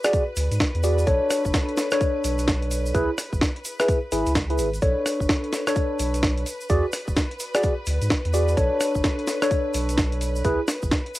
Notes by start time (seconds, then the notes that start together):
Already playing: B4
0.04 F#4 G#4 D5, cross-stick, closed hi-hat, shaker
0.13 kick, closed hi-hat, shaker
0.36 D2, open hi-hat, shaker
0.51 G#2, closed hi-hat, shaker
0.60 kick, snare, shaker
0.75 E2, closed hi-hat
0.83 F#4 G#4 D5, open hi-hat, shaker
0.98 closed hi-hat, shaker
1.07 B1 D4 A4 C#5, kick, closed hi-hat, shaker
1.30 cross-stick, open hi-hat, shaker
1.45 F#1, kick, shaker
1.54 kick, snare, shaker
1.69 closed hi-hat
1.77 snare, open hi-hat, shaker
1.91 D4 A4 C#5, cross-stick, closed hi-hat, shaker
2.01 kick, closed hi-hat, shaker
2.24 B1, open hi-hat, shaker
2.38 closed hi-hat, shaker
2.48 kick, snare, shaker
2.62 closed hi-hat
2.71 open hi-hat, shaker
2.86 shaker
2.94 C#2 E4 G#4 B4, kick, closed hi-hat, shaker
3.18 cross-stick, open hi-hat, shaker
3.33 G#1, kick, shaker
3.41 kick, snare, shaker
3.56 closed hi-hat
3.65 open hi-hat, shaker
3.80 E4 G#4 B4, cross-stick, closed hi-hat, shaker
3.88 kick, closed hi-hat, shaker
4.12 G#1 E4 G#4 B4, open hi-hat, shaker
4.26 C#2, closed hi-hat, shaker
4.35 kick, snare, shaker
4.50 E4 G#4 B4, closed hi-hat
4.58 G#1, open hi-hat, shaker
4.74 closed hi-hat, shaker
4.82 B1 D4 A4 B4 C#5, kick, closed hi-hat, shaker
5.06 cross-stick, open hi-hat, shaker
5.20 F#1, kick, shaker
5.29 kick, snare, shaker
5.44 closed hi-hat
5.53 snare, open hi-hat, shaker
5.67 D4 A4 C#5, cross-stick, closed hi-hat, shaker
5.76 kick, closed hi-hat, shaker
5.99 B1, open hi-hat, shaker
6.14 closed hi-hat, shaker
6.23 kick, snare, shaker
6.38 closed hi-hat
6.46 open hi-hat, shaker
6.61 shaker
6.69 E2 F#4 G#4 D5, kick, closed hi-hat, shaker
6.93 cross-stick, open hi-hat, shaker
7.08 E1, kick, shaker
7.16 kick, snare, shaker
7.31 closed hi-hat
7.40 open hi-hat, shaker
7.55 F#4 G#4 D5, cross-stick, closed hi-hat, shaker
7.63 kick, closed hi-hat, shaker
7.86 D2, open hi-hat, shaker
8.01 G#2, closed hi-hat, shaker
8.10 kick, snare, shaker
8.25 E2, closed hi-hat
8.34 F#4 G#4 D5, open hi-hat, shaker
8.48 closed hi-hat, shaker
8.57 B1 D4 A4 C#5, kick, closed hi-hat, shaker
8.81 cross-stick, open hi-hat, shaker
8.95 F#1, kick, shaker
9.04 kick, snare, shaker
9.19 closed hi-hat
9.27 snare, open hi-hat, shaker
9.42 D4 A4 C#5, cross-stick, closed hi-hat, shaker
9.51 kick, closed hi-hat, shaker
9.74 B1, open hi-hat, shaker
9.89 closed hi-hat, shaker
9.98 kick, snare, shaker
10.12 closed hi-hat
10.21 open hi-hat, shaker
10.36 shaker
10.45 C#2 E4 G#4 B4, kick, closed hi-hat, shaker
10.68 cross-stick, snare, open hi-hat, shaker
10.83 G#1, kick, shaker
10.91 kick, snare, shaker
11.06 closed hi-hat
11.15 open hi-hat, shaker